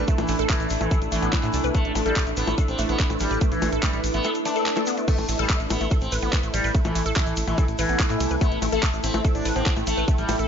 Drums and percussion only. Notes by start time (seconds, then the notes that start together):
0.08 kick, closed hi-hat, shaker
0.18 closed hi-hat, high bongo, shaker
0.28 open hi-hat, shaker
0.39 closed hi-hat, shaker
0.50 kick, clap, closed hi-hat, shaker
0.60 closed hi-hat, shaker
0.69 open hi-hat, shaker
0.81 closed hi-hat, high bongo, shaker
0.91 kick, closed hi-hat, shaker
1.02 closed hi-hat, shaker
1.12 open hi-hat, shaker
1.22 closed hi-hat, shaker
1.33 kick, clap, closed hi-hat, high bongo, shaker
1.43 clap, closed hi-hat, shaker
1.53 open hi-hat, shaker
1.64 closed hi-hat, shaker
1.75 kick, closed hi-hat, shaker
1.85 closed hi-hat
1.95 open hi-hat, high bongo, shaker
2.06 closed hi-hat, shaker
2.16 kick, clap, closed hi-hat, shaker
2.26 closed hi-hat, shaker
2.37 open hi-hat, shaker
2.47 closed hi-hat, high bongo, shaker
2.58 kick, closed hi-hat, shaker
2.68 closed hi-hat, shaker
2.78 open hi-hat, shaker
2.89 closed hi-hat, shaker
2.99 kick, clap, closed hi-hat, shaker
3.10 closed hi-hat, high bongo, shaker
3.19 open hi-hat, shaker
3.31 closed hi-hat, shaker
3.41 kick, closed hi-hat, shaker
3.52 closed hi-hat, shaker
3.62 open hi-hat, high bongo, shaker
3.72 closed hi-hat, shaker
3.83 kick, clap, closed hi-hat, shaker
3.93 closed hi-hat, shaker
4.04 open hi-hat, shaker
4.13 closed hi-hat, shaker
4.24 closed hi-hat, high bongo, shaker
4.35 closed hi-hat, shaker
4.45 open hi-hat, shaker
4.56 closed hi-hat, shaker
4.66 clap, closed hi-hat, shaker
4.76 clap, closed hi-hat, high bongo, shaker
4.86 open hi-hat, shaker
4.97 closed hi-hat, shaker
5.08 kick, closed hi-hat, crash, shaker
5.18 closed hi-hat, high bongo
5.28 open hi-hat, ride, shaker
5.39 closed hi-hat, shaker
5.49 kick, clap, closed hi-hat, shaker
5.60 closed hi-hat, shaker
5.70 open hi-hat, ride, high bongo, shaker
5.81 closed hi-hat, shaker
5.91 kick, closed hi-hat, shaker
6.01 closed hi-hat, shaker
6.12 open hi-hat, ride, shaker
6.22 closed hi-hat, shaker
6.33 kick, clap, closed hi-hat, high bongo, shaker
6.43 closed hi-hat, shaker
6.54 open hi-hat, ride, shaker
6.64 closed hi-hat, shaker
6.74 kick, closed hi-hat, shaker
6.85 closed hi-hat, high bongo, shaker
6.95 open hi-hat, ride, shaker
7.06 closed hi-hat, shaker
7.16 kick, clap, closed hi-hat, shaker
7.26 closed hi-hat, shaker
7.36 open hi-hat, ride, shaker
7.47 closed hi-hat, high bongo, shaker
7.58 kick, closed hi-hat, shaker
7.68 closed hi-hat, shaker
7.78 open hi-hat, ride, shaker
7.89 closed hi-hat, shaker
8.00 kick, clap, closed hi-hat, high bongo, shaker
8.10 clap, closed hi-hat, shaker
8.20 open hi-hat, ride, shaker
8.30 closed hi-hat, shaker
8.41 kick, closed hi-hat, shaker
8.52 closed hi-hat
8.62 open hi-hat, ride, high bongo, shaker
8.72 closed hi-hat, shaker
8.83 kick, clap, closed hi-hat, shaker
8.93 closed hi-hat, shaker
9.04 open hi-hat, ride, shaker
9.14 closed hi-hat, high bongo, shaker
9.25 kick, closed hi-hat, shaker
9.35 closed hi-hat, shaker
9.45 open hi-hat, ride, shaker
9.56 closed hi-hat, shaker
9.66 kick, clap, closed hi-hat, shaker
9.77 closed hi-hat, high bongo, shaker
9.87 open hi-hat, ride, shaker
9.97 closed hi-hat, shaker
10.08 kick, closed hi-hat, shaker
10.18 closed hi-hat, shaker
10.29 open hi-hat, ride, high bongo, shaker
10.39 closed hi-hat, shaker